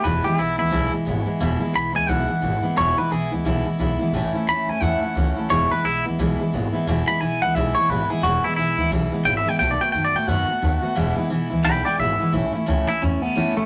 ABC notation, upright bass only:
X:1
M:4/4
L:1/8
Q:"Swing" 1/4=176
K:Emix
V:1 name="Upright bass" clef=bass
E,,, z B,,, D,, B,,, z G,,, z | E,,, z B,,, D,, B,,, z G,,, z | E,,, z B,,, D,, B,,, z B,,, z | A,,, z E,, F,, E,, z C,, z |
E,,, z B,,, D,, B,,, z G,,, z | E,,, z B,,, D,, B,,, z G,,, z | E,,, z B,,, D,, B,,, z G,,, z | B,,, z F,, A,, F,, z ^D,, z |
E,,, z B,,, D,, B,,, z G,,, z | [K:Alyd] A,,, z C,, z E,, z F,, A,, |]